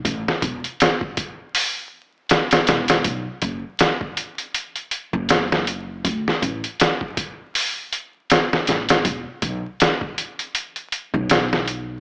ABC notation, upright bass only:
X:1
M:4/4
L:1/16
Q:"Swing 16ths" 1/4=80
K:D
V:1 name="Upright bass" clef=bass
A,,, z E,,, z8 z3 E,,,2 | B,,, z F,,, z8 F,,,4- F,,, | D,, z A,,, z8 z3 A,,,2 | E,,, z B,,, z8 B,,,4- B,,, |]